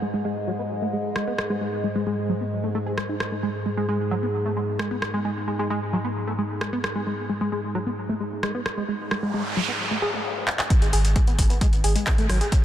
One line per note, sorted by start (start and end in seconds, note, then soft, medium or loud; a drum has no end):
0.00 10.25 G#2 medium
0.00 10.25 G#3 medium
0.00 0.06 G#3 medium
0.14 0.22 G#3 loud
0.25 0.34 G#3 loud
0.48 0.51 F#3 loud
0.59 0.63 B3 medium
0.82 0.88 A3 medium
0.93 0.97 G#3 medium
1.16 1.25 G#3 loud
1.16 cross-stick medium
1.27 1.33 B3 loud
1.38 cross-stick medium
1.50 1.56 G#3 loud
1.61 1.67 G#3 medium
1.84 1.87 G#3 medium
1.96 2.04 G#3 loud
2.07 2.15 G#3 loud
2.29 2.33 F#3 loud
2.41 2.44 B3 medium
2.64 2.69 A3 medium
2.75 2.78 A3 loud
2.86 2.92 G#4 medium
2.98 3.03 G#3 medium
2.98 cross-stick medium
3.09 3.15 D#4 medium
3.20 cross-stick medium
3.32 3.35 A3 medium
3.43 3.49 G#3 medium
3.66 3.69 G#3 medium
3.77 3.86 G#3 loud
3.89 3.97 G#3 loud
4.11 4.15 F#3 loud
4.23 4.26 B3 medium
4.46 4.51 A3 medium
4.57 4.60 G#3 medium
4.79 4.88 G#3 loud
4.79 cross-stick loud
4.91 4.97 B3 loud
5.02 cross-stick medium
5.14 5.19 G#3 medium
5.25 5.31 G#3 medium
5.48 5.51 G#3 medium
5.59 5.68 G#3 loud
5.70 5.79 G#3 loud
5.93 5.97 F#3 loud
6.05 6.08 B3 medium
6.27 6.33 A3 medium
6.38 6.42 G#3 medium
6.61 6.70 G#3 loud
6.61 cross-stick medium
6.73 6.78 B3 loud
6.84 cross-stick medium
6.96 7.01 G#3 loud
7.07 7.13 G#3 medium
7.29 7.33 G#3 medium
7.41 7.49 G#3 loud
7.52 7.61 G#3 loud
7.75 7.78 F#3 loud
7.86 7.90 B3 medium
8.09 8.15 A3 medium
8.20 8.24 G#3 medium
8.43 8.52 G#3 loud
8.43 cross-stick medium
8.55 8.60 B3 loud
8.66 cross-stick medium
8.77 8.83 G#3 loud
8.88 8.94 G#3 medium
8.88 noise sweep medium
9.11 9.15 G#3 medium
9.11 cross-stick medium
9.23 9.31 G#3 loud
9.34 9.43 G#3 loud
9.57 9.60 F#3 loud
9.68 9.72 B3 medium
9.91 9.97 A3 medium
10.02 10.11 G#4 loud
10.14 10.19 A3 medium
10.48 clap medium
10.59 clap medium
10.70 12.65 G#2 medium
10.70 12.65 G#3 medium
10.70 kick loud
10.70 closed hi-hat medium
10.82 10.92 G#1 medium
10.82 10.88 G#3 medium
10.82 closed hi-hat medium
10.93 11.04 G#1 loud
10.93 11.02 G#4 medium
10.93 open hi-hat loud
11.05 11.16 G#1 medium
11.05 closed hi-hat medium
11.16 11.19 G#3 medium
11.16 kick loud
11.16 closed hi-hat loud
11.27 11.38 G#1 medium
11.27 11.33 B3 medium
11.27 closed hi-hat medium
11.39 11.50 G#1 loud
11.39 kick medium
11.39 open hi-hat loud
11.50 11.59 B3 medium
11.50 closed hi-hat medium
11.61 11.67 G#3 loud
11.61 kick loud
11.61 closed hi-hat medium
11.73 11.83 G#1 medium
11.73 closed hi-hat medium
11.84 11.95 G#1 loud
11.84 11.93 G#4 medium
11.84 open hi-hat loud
11.96 12.04 G#3 medium
11.96 closed hi-hat medium
12.07 kick loud
12.07 cross-stick medium
12.07 clap loud
12.07 closed hi-hat loud
12.18 12.29 G#1 medium
12.18 12.27 A3 loud
12.18 closed hi-hat medium
12.29 12.41 G#1 loud
12.29 12.38 F#3 loud
12.29 cross-stick medium
12.29 open hi-hat loud
12.41 12.47 G#4 medium
12.41 closed hi-hat medium
12.52 kick loud
12.52 closed hi-hat loud